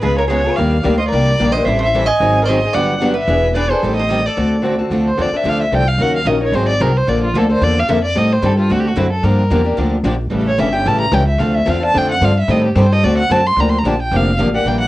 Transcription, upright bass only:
0.03 0.47 C#2 medium
0.58 0.80 D#2 medium
0.85 1.08 D2 medium
1.12 1.35 C2 medium
1.40 1.62 A#1 medium
1.66 2.09 A1 medium
2.20 2.64 G#1 medium
2.74 3.18 G1 medium
3.28 3.71 E1 medium
3.83 4.26 A1 medium
4.37 4.81 D2 medium
4.90 5.17 D2 medium
5.18 5.31 E2 medium
5.32 muted upright bass stroke soft
5.44 5.71 D2 medium
5.71 5.98 C2 medium
5.98 6.25 D#2 medium
6.25 6.51 A#1 medium
6.52 6.79 G#1 medium
6.80 7.07 C2 medium
7.07 7.33 A#1 medium
7.34 7.60 D2 medium
7.61 7.87 E2 medium
7.89 8.15 F2 medium
8.15 8.41 A2 medium
8.42 8.69 G2 medium
8.70 8.96 D2 medium
8.96 9.22 F#2 medium
9.23 9.50 G2 medium
9.51 9.77 E2 medium
9.78 10.03 D2 medium
10.04 10.30 A#1 medium
10.31 10.58 A1 medium
10.58 10.85 G1 medium
10.86 11.11 A1 medium
11.12 11.38 C#2 loud
11.38 11.66 D2 medium
11.67 11.94 E2 medium
11.95 12.20 F2 medium
12.21 12.47 G2 medium
12.48 12.75 A2 medium
12.75 13.02 G2 loud
13.04 13.29 D2 medium
13.30 13.56 F#2 medium
13.56 13.83 D2 medium
13.84 14.10 A#1 medium
14.11 14.38 F1 medium
14.39 14.65 A1 medium
14.65 14.88 A#1 medium

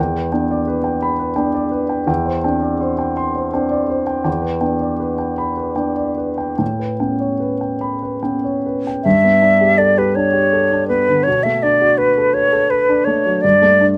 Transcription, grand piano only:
0.00 0.32 E2 medium
0.00 0.26 G5 soft
0.16 0.44 B4 soft
0.32 1.33 B3 soft
0.32 1.33 D4 soft
0.32 0.60 G5 soft
0.51 0.78 D5 soft
0.68 0.95 B4 soft
0.84 1.12 G5 soft
1.02 1.30 B5 medium
1.19 1.47 B4 soft
1.36 2.04 B3 soft
1.36 2.04 D4 soft
1.36 1.65 G5 soft
1.54 1.83 D5 soft
1.72 2.01 B4 soft
1.89 2.06 G5 soft
2.07 2.43 E2 medium
2.07 2.37 G5 medium
2.26 2.56 C5 soft
2.44 3.50 C4 soft
2.44 3.51 D4 soft
2.44 2.74 G5 soft
2.62 2.92 D5 soft
2.81 3.11 C5 soft
2.99 3.29 G5 soft
3.17 3.47 C6 soft
3.36 3.65 C5 soft
3.54 4.22 C4 soft
3.54 4.22 D4 soft
3.54 3.83 G5 soft
3.71 4.01 D5 soft
3.90 4.19 C5 soft
4.07 4.23 G5 soft
4.24 4.61 E2 medium
4.24 4.55 G5 soft
4.42 4.73 B4 soft
4.61 5.73 B3 soft
4.61 5.74 D4 soft
4.61 4.92 G5 soft
4.81 5.12 D5 soft
5.00 5.31 B4 soft
5.18 5.50 G5 soft
5.38 5.70 B5 soft
5.57 5.90 B4 soft
5.76 6.55 B3 soft
5.76 6.55 D4 soft
5.76 6.10 G5 soft
5.96 6.30 D5 soft
6.18 6.51 B4 soft
6.38 6.57 G5 soft
6.58 6.99 A2 soft
6.58 6.92 G5 soft
6.79 7.13 B4 soft
7.00 8.20 B3 soft
7.00 8.20 C#4 soft
7.00 7.33 G5 soft
7.20 7.54 C#5 soft
7.40 7.74 B4 soft
7.61 7.95 G5 soft
7.81 8.15 B5 soft
8.02 8.36 B4 soft
8.23 9.00 B3 soft
8.23 9.00 C#4 soft
8.23 8.56 G5 soft
8.44 8.77 C#5 soft
8.66 8.98 B4 soft
8.87 9.06 G5 soft
9.06 11.23 G2 medium
9.24 9.54 B3 soft
9.42 9.72 D4 soft
9.61 9.91 G4 soft
9.78 10.09 A4 soft
9.98 10.27 G4 soft
10.16 10.46 D4 soft
10.33 10.64 G4 soft
10.53 10.83 A4 soft
10.71 11.01 D4 soft
10.89 11.19 B3 soft
11.09 11.27 D3 soft
11.27 13.39 B2 soft
11.45 11.74 A3 soft
11.63 11.92 D4 soft
11.81 12.10 F#4 soft
11.99 12.28 B4 soft
12.18 12.46 A4 soft
12.34 12.64 B4 soft
12.52 12.82 A4 soft
12.71 13.00 B4 soft
12.89 13.18 D4 soft
13.07 13.36 A3 soft
13.26 13.44 F#3 soft
13.44 13.98 G2 medium
13.62 13.90 A3 soft
13.81 13.98 D4 soft

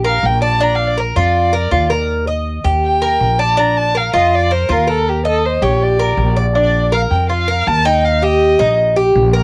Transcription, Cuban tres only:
0.04 0.41 A#4 medium
0.42 0.60 D5 medium
0.61 0.96 D4 medium
0.97 1.15 A#4 medium
1.16 1.52 F4 medium
1.53 1.71 A#4 medium
1.71 1.90 F4 medium
1.90 2.26 A#4 medium
2.27 2.64 D#5 medium
2.64 3.01 G4 medium
3.02 3.38 A#4 medium
3.39 3.57 D5 medium
3.57 3.94 D4 medium
3.95 4.13 A#4 medium
4.13 4.50 F4 medium
4.51 4.69 A#4 medium
4.69 4.87 F4 medium
4.87 5.24 A#4 medium
5.25 5.61 D#5 medium
5.62 5.98 G4 medium
5.99 6.35 A#4 medium
6.36 6.55 D5 medium
6.55 6.91 D4 loud
6.92 7.28 A#4 medium
7.29 7.47 F4 medium
7.48 7.84 A#4 medium
7.85 8.21 D#4 loud
8.22 8.58 G4 medium
8.59 8.95 D#4 medium
8.96 9.33 G4 medium
9.33 9.43 A#4 medium

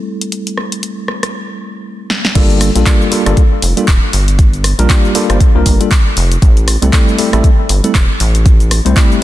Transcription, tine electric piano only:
0.00 2.32 G3 medium
0.00 2.33 A3 medium
0.00 2.33 C4 medium
0.00 2.33 E4 medium
0.00 2.33 A4 medium
2.35 2.69 G3 loud
2.35 2.70 A#3 medium
2.35 2.70 D4 medium
2.35 2.70 F4 medium
2.35 2.70 A4 loud
2.75 2.84 G3 medium
2.75 2.84 A#3 medium
2.75 2.84 D4 medium
2.75 2.84 F4 medium
2.75 2.84 A4 medium
2.86 3.09 G3 medium
2.86 3.09 A#3 medium
2.86 3.09 D4 medium
2.86 3.09 F4 medium
2.86 3.09 A4 medium
3.11 3.23 G3 medium
3.11 3.23 A#3 medium
3.11 3.23 D4 medium
3.11 3.23 F4 medium
3.11 3.23 A4 medium
3.26 3.41 G3 medium
3.26 3.41 A#3 medium
3.26 3.41 D4 medium
3.26 3.41 F4 medium
3.26 3.41 A4 loud
3.77 3.86 G3 medium
3.77 3.86 A#3 medium
3.77 3.86 D4 medium
3.77 3.86 F4 medium
3.77 3.86 A4 medium
4.78 4.87 G3 medium
4.78 4.87 A#3 medium
4.78 4.87 D4 medium
4.78 4.88 F4 medium
4.78 4.88 A#4 medium
4.89 5.12 G3 medium
4.89 5.12 A#3 medium
4.89 5.12 D4 medium
4.89 5.13 G4 medium
5.15 5.27 G3 medium
5.15 5.27 A#3 medium
5.15 5.28 D4 medium
5.15 5.28 F4 medium
5.15 5.28 A4 loud
5.29 5.38 G3 medium
5.29 5.38 A#3 medium
5.29 5.38 D4 medium
5.29 5.38 F4 medium
5.29 5.38 C5 medium
5.55 5.77 G3 medium
5.55 5.78 A#3 medium
5.55 5.78 D4 medium
5.55 5.78 F4 medium
5.55 5.78 A#4 medium
5.80 5.89 G3 medium
5.80 5.89 A#3 medium
5.80 5.89 D4 medium
5.80 5.89 F4 medium
5.80 5.89 A4 medium
6.82 6.91 G3 medium
6.82 6.91 A3 medium
6.82 6.91 C4 medium
6.82 6.91 E4 medium
6.82 6.91 A4 medium
6.93 7.16 G3 medium
6.93 7.16 A3 medium
6.93 7.16 C4 medium
6.93 7.16 E4 medium
6.93 7.16 A4 medium
7.18 7.29 G3 medium
7.18 7.30 A3 medium
7.18 7.30 C4 medium
7.18 7.30 E4 medium
7.18 7.30 A4 medium
7.33 7.48 G3 medium
7.33 7.48 A3 medium
7.33 7.48 C4 medium
7.33 7.48 E4 medium
7.33 7.48 A4 loud
7.84 7.92 G3 medium
7.84 7.92 A3 medium
7.84 7.93 C4 medium
7.84 7.93 E4 medium
7.84 7.93 A4 medium
8.85 8.94 G3 medium
8.85 8.94 A3 medium
8.85 8.94 C4 medium
8.85 8.94 E4 medium
8.85 8.94 C5 medium
8.96 9.19 G3 medium
8.96 9.19 A3 medium
8.96 9.19 C4 medium
8.96 9.19 E4 medium
8.96 9.20 G4 medium

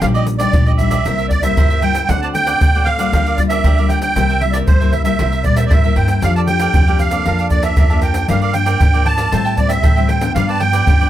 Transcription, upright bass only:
0.02 0.46 A#1 loud
0.54 0.98 A#1 medium
1.06 1.50 C2 medium
1.58 2.02 C#2 medium
2.09 2.53 D2 loud
2.61 3.05 D2 medium
3.13 3.57 D2 medium
3.64 4.08 D2 medium
4.16 4.60 C2 medium
4.68 5.12 C2 medium
5.20 5.42 C2 medium
5.45 5.68 A#2 medium
5.72 5.95 A2 medium
5.97 6.20 G2 medium
6.23 6.67 F2 medium
6.74 7.18 F2 medium
7.26 7.70 F2 medium
7.78 8.22 F2 medium
8.29 8.73 G2 medium
8.81 9.25 G#2 medium
9.33 9.76 A2 medium
9.84 10.28 A2 medium
10.36 10.80 G2 loud
10.87 11.10 G2 medium

